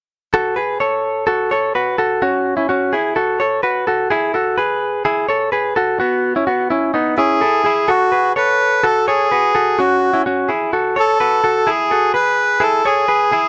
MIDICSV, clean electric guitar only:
0, 0, Header, 1, 2, 480
1, 0, Start_track
1, 0, Key_signature, 3, "minor"
1, 0, Tempo, 472441
1, 334, Time_signature, 4, 2, 24, 8
1, 13701, End_track
2, 0, Start_track
2, 0, Title_t, "Clean electric guitar"
2, 0, Program_c, 0, 27
2, 342, Note_on_c, 0, 69, 91
2, 348, Note_on_c, 0, 66, 69
2, 570, Note_on_c, 0, 71, 70
2, 576, Note_off_c, 0, 69, 0
2, 580, Note_on_c, 0, 68, 56
2, 581, Note_off_c, 0, 66, 0
2, 811, Note_off_c, 0, 71, 0
2, 815, Note_on_c, 0, 73, 72
2, 817, Note_off_c, 0, 68, 0
2, 823, Note_on_c, 0, 69, 54
2, 1266, Note_off_c, 0, 73, 0
2, 1270, Note_off_c, 0, 69, 0
2, 1288, Note_on_c, 0, 69, 79
2, 1299, Note_on_c, 0, 66, 60
2, 1531, Note_off_c, 0, 69, 0
2, 1536, Note_off_c, 0, 66, 0
2, 1537, Note_on_c, 0, 73, 71
2, 1548, Note_on_c, 0, 69, 56
2, 1774, Note_off_c, 0, 73, 0
2, 1779, Note_off_c, 0, 69, 0
2, 1779, Note_on_c, 0, 71, 69
2, 1783, Note_on_c, 0, 66, 50
2, 2008, Note_off_c, 0, 66, 0
2, 2015, Note_on_c, 0, 69, 79
2, 2016, Note_off_c, 0, 71, 0
2, 2021, Note_on_c, 0, 66, 62
2, 2244, Note_off_c, 0, 66, 0
2, 2254, Note_off_c, 0, 69, 0
2, 2256, Note_on_c, 0, 66, 90
2, 2263, Note_on_c, 0, 61, 68
2, 2593, Note_off_c, 0, 66, 0
2, 2597, Note_off_c, 0, 61, 0
2, 2608, Note_on_c, 0, 64, 62
2, 2619, Note_on_c, 0, 61, 48
2, 2729, Note_off_c, 0, 64, 0
2, 2731, Note_off_c, 0, 61, 0
2, 2733, Note_on_c, 0, 66, 72
2, 2743, Note_on_c, 0, 61, 57
2, 2973, Note_off_c, 0, 66, 0
2, 2974, Note_on_c, 0, 68, 71
2, 2978, Note_off_c, 0, 61, 0
2, 2984, Note_on_c, 0, 64, 56
2, 3205, Note_off_c, 0, 68, 0
2, 3210, Note_on_c, 0, 69, 70
2, 3216, Note_on_c, 0, 66, 57
2, 3218, Note_off_c, 0, 64, 0
2, 3451, Note_off_c, 0, 69, 0
2, 3452, Note_on_c, 0, 73, 74
2, 3454, Note_off_c, 0, 66, 0
2, 3464, Note_on_c, 0, 69, 55
2, 3685, Note_off_c, 0, 73, 0
2, 3689, Note_on_c, 0, 71, 74
2, 3691, Note_off_c, 0, 69, 0
2, 3695, Note_on_c, 0, 66, 54
2, 3929, Note_off_c, 0, 66, 0
2, 3931, Note_off_c, 0, 71, 0
2, 3934, Note_on_c, 0, 69, 73
2, 3943, Note_on_c, 0, 66, 59
2, 4166, Note_off_c, 0, 69, 0
2, 4170, Note_on_c, 0, 68, 91
2, 4177, Note_off_c, 0, 66, 0
2, 4180, Note_on_c, 0, 64, 74
2, 4406, Note_off_c, 0, 68, 0
2, 4410, Note_on_c, 0, 69, 74
2, 4416, Note_off_c, 0, 64, 0
2, 4419, Note_on_c, 0, 66, 57
2, 4649, Note_on_c, 0, 71, 72
2, 4651, Note_off_c, 0, 69, 0
2, 4655, Note_off_c, 0, 66, 0
2, 4659, Note_on_c, 0, 68, 56
2, 5101, Note_off_c, 0, 71, 0
2, 5107, Note_off_c, 0, 68, 0
2, 5130, Note_on_c, 0, 68, 76
2, 5137, Note_on_c, 0, 64, 59
2, 5365, Note_off_c, 0, 64, 0
2, 5370, Note_on_c, 0, 73, 72
2, 5371, Note_off_c, 0, 68, 0
2, 5381, Note_on_c, 0, 69, 59
2, 5605, Note_off_c, 0, 73, 0
2, 5609, Note_on_c, 0, 71, 68
2, 5612, Note_off_c, 0, 69, 0
2, 5616, Note_on_c, 0, 68, 55
2, 5850, Note_off_c, 0, 68, 0
2, 5850, Note_off_c, 0, 71, 0
2, 5854, Note_on_c, 0, 69, 80
2, 5864, Note_on_c, 0, 66, 66
2, 6081, Note_off_c, 0, 66, 0
2, 6092, Note_off_c, 0, 69, 0
2, 6093, Note_on_c, 0, 66, 89
2, 6103, Note_on_c, 0, 59, 69
2, 6430, Note_off_c, 0, 66, 0
2, 6435, Note_off_c, 0, 59, 0
2, 6461, Note_on_c, 0, 64, 62
2, 6466, Note_on_c, 0, 61, 50
2, 6569, Note_off_c, 0, 64, 0
2, 6573, Note_on_c, 0, 66, 80
2, 6578, Note_off_c, 0, 61, 0
2, 6584, Note_on_c, 0, 59, 58
2, 6807, Note_off_c, 0, 66, 0
2, 6811, Note_on_c, 0, 64, 69
2, 6817, Note_off_c, 0, 59, 0
2, 6823, Note_on_c, 0, 61, 53
2, 7045, Note_off_c, 0, 64, 0
2, 7049, Note_on_c, 0, 63, 74
2, 7056, Note_off_c, 0, 61, 0
2, 7058, Note_on_c, 0, 59, 59
2, 7287, Note_off_c, 0, 63, 0
2, 7291, Note_on_c, 0, 64, 71
2, 7294, Note_off_c, 0, 59, 0
2, 7301, Note_on_c, 0, 61, 54
2, 7525, Note_off_c, 0, 64, 0
2, 7531, Note_on_c, 0, 69, 68
2, 7535, Note_off_c, 0, 61, 0
2, 7537, Note_on_c, 0, 64, 53
2, 7765, Note_off_c, 0, 69, 0
2, 7769, Note_on_c, 0, 68, 70
2, 7771, Note_off_c, 0, 64, 0
2, 7783, Note_on_c, 0, 64, 55
2, 8004, Note_off_c, 0, 68, 0
2, 8008, Note_on_c, 0, 69, 85
2, 8014, Note_on_c, 0, 66, 66
2, 8016, Note_off_c, 0, 64, 0
2, 8248, Note_on_c, 0, 71, 71
2, 8249, Note_off_c, 0, 69, 0
2, 8252, Note_off_c, 0, 66, 0
2, 8258, Note_on_c, 0, 68, 53
2, 8489, Note_off_c, 0, 71, 0
2, 8494, Note_off_c, 0, 68, 0
2, 8495, Note_on_c, 0, 73, 67
2, 8502, Note_on_c, 0, 69, 52
2, 8944, Note_off_c, 0, 73, 0
2, 8948, Note_off_c, 0, 69, 0
2, 8976, Note_on_c, 0, 69, 72
2, 8982, Note_on_c, 0, 66, 56
2, 9213, Note_off_c, 0, 69, 0
2, 9216, Note_off_c, 0, 66, 0
2, 9223, Note_on_c, 0, 73, 70
2, 9233, Note_on_c, 0, 69, 54
2, 9456, Note_off_c, 0, 73, 0
2, 9462, Note_off_c, 0, 69, 0
2, 9464, Note_on_c, 0, 71, 66
2, 9473, Note_on_c, 0, 66, 51
2, 9695, Note_off_c, 0, 66, 0
2, 9697, Note_off_c, 0, 71, 0
2, 9700, Note_on_c, 0, 69, 75
2, 9707, Note_on_c, 0, 66, 58
2, 9931, Note_off_c, 0, 66, 0
2, 9935, Note_off_c, 0, 69, 0
2, 9943, Note_on_c, 0, 66, 86
2, 9954, Note_on_c, 0, 61, 66
2, 10275, Note_off_c, 0, 66, 0
2, 10281, Note_off_c, 0, 61, 0
2, 10296, Note_on_c, 0, 64, 64
2, 10306, Note_on_c, 0, 61, 47
2, 10413, Note_off_c, 0, 64, 0
2, 10418, Note_off_c, 0, 61, 0
2, 10425, Note_on_c, 0, 66, 69
2, 10434, Note_on_c, 0, 61, 60
2, 10653, Note_on_c, 0, 68, 67
2, 10658, Note_off_c, 0, 66, 0
2, 10661, Note_on_c, 0, 64, 53
2, 10662, Note_off_c, 0, 61, 0
2, 10892, Note_off_c, 0, 68, 0
2, 10896, Note_off_c, 0, 64, 0
2, 10902, Note_on_c, 0, 66, 55
2, 10905, Note_on_c, 0, 69, 63
2, 11136, Note_off_c, 0, 69, 0
2, 11137, Note_off_c, 0, 66, 0
2, 11138, Note_on_c, 0, 73, 68
2, 11150, Note_on_c, 0, 69, 53
2, 11374, Note_off_c, 0, 73, 0
2, 11380, Note_off_c, 0, 69, 0
2, 11382, Note_on_c, 0, 71, 68
2, 11389, Note_on_c, 0, 66, 51
2, 11614, Note_off_c, 0, 66, 0
2, 11617, Note_off_c, 0, 71, 0
2, 11620, Note_on_c, 0, 69, 68
2, 11627, Note_on_c, 0, 66, 57
2, 11850, Note_off_c, 0, 69, 0
2, 11854, Note_on_c, 0, 68, 88
2, 11859, Note_off_c, 0, 66, 0
2, 11861, Note_on_c, 0, 64, 69
2, 12093, Note_off_c, 0, 68, 0
2, 12096, Note_off_c, 0, 64, 0
2, 12102, Note_on_c, 0, 69, 73
2, 12110, Note_on_c, 0, 66, 53
2, 12333, Note_on_c, 0, 71, 66
2, 12336, Note_off_c, 0, 69, 0
2, 12341, Note_off_c, 0, 66, 0
2, 12341, Note_on_c, 0, 68, 51
2, 12783, Note_off_c, 0, 71, 0
2, 12787, Note_off_c, 0, 68, 0
2, 12803, Note_on_c, 0, 68, 72
2, 12813, Note_on_c, 0, 64, 54
2, 13047, Note_off_c, 0, 68, 0
2, 13052, Note_off_c, 0, 64, 0
2, 13055, Note_on_c, 0, 69, 50
2, 13060, Note_on_c, 0, 73, 60
2, 13288, Note_off_c, 0, 73, 0
2, 13292, Note_on_c, 0, 71, 61
2, 13294, Note_off_c, 0, 69, 0
2, 13298, Note_on_c, 0, 68, 51
2, 13525, Note_off_c, 0, 68, 0
2, 13532, Note_off_c, 0, 71, 0
2, 13537, Note_on_c, 0, 68, 79
2, 13544, Note_on_c, 0, 64, 59
2, 13701, Note_off_c, 0, 64, 0
2, 13701, Note_off_c, 0, 68, 0
2, 13701, End_track
0, 0, End_of_file